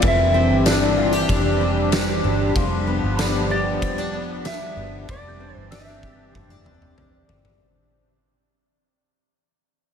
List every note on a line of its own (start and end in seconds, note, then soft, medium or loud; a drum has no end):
0.00 0.51 F1 loud
0.00 2.55 E3 medium
0.00 2.53 E3 medium
0.00 0.34 C4 medium
0.00 2.51 C4 medium
0.00 5.05 D4 medium
0.00 7.57 G4 medium
0.00 kick loud
0.00 ride medium
0.04 7.57 G3 medium
0.04 1.28 E5 medium
0.34 1.60 C4 medium
0.51 1.25 G1 medium
0.66 1.29 D4 medium
0.66 snare loud
0.66 ride medium
0.66 tambourine medium
0.97 1.13 F4 medium
1.13 2.61 G4 medium
1.29 2.20 F1 loud
1.29 1.92 D4 medium
1.29 kick medium
1.29 ride medium
1.61 2.23 C4 medium
1.92 3.18 D4 medium
1.92 snare loud
1.92 ride medium
1.92 tambourine medium
2.24 2.54 G1 medium
2.24 2.62 C4 medium
2.56 3.00 F1 loud
2.56 5.08 F3 medium
2.56 5.06 F3 medium
2.56 5.06 B3 medium
2.56 kick loud
2.56 ride medium
2.87 4.12 B3 medium
3.03 3.82 G1 medium
3.17 3.81 D4 medium
3.17 4.60 B5 medium
3.17 snare loud
3.17 ride medium
3.17 tambourine medium
3.51 6.03 G4 medium
3.51 4.48 D5 loud
3.82 4.73 F1 loud
3.82 3.98 C4 medium
3.82 kick medium
3.82 ride medium
3.98 4.45 D4 medium
4.14 4.76 B3 medium
4.45 5.43 D4 medium
4.45 5.11 E5 loud
4.45 snare loud
4.45 ride medium
4.45 tambourine medium
4.77 5.07 G1 medium
4.77 5.15 B3 medium
5.08 5.54 F1 loud
5.08 8.17 E3 medium
5.08 7.59 E3 medium
5.08 7.59 C4 medium
5.08 7.59 D4 medium
5.08 5.54 D5 loud
5.08 6.32 D6 medium
5.08 kick loud
5.08 ride medium
5.28 5.89 G6 medium
5.40 6.35 C4 medium
5.50 6.11 A6 medium
5.54 6.31 G1 medium
5.54 5.68 C5 loud
5.71 6.34 D4 medium
5.71 6.76 E5 medium
5.71 7.14 E6 medium
5.71 snare loud
5.71 ride medium
5.71 tambourine medium
5.90 7.31 G6 medium
6.03 8.17 G4 medium
6.03 kick medium
6.12 7.50 A6 medium
6.34 7.25 F1 loud
6.34 6.50 C4 medium
6.34 7.76 D6 medium
6.34 kick medium
6.34 high tom medium
6.50 6.97 D4 medium
6.50 high tom medium
6.66 7.28 C4 medium
6.66 mid tom medium
6.76 7.27 D5 medium
6.82 mid tom medium
6.98 8.17 D4 medium
6.98 mid tom medium
7.29 7.60 G1 medium
7.29 8.17 C4 medium
7.29 floor tom loud
7.45 floor tom loud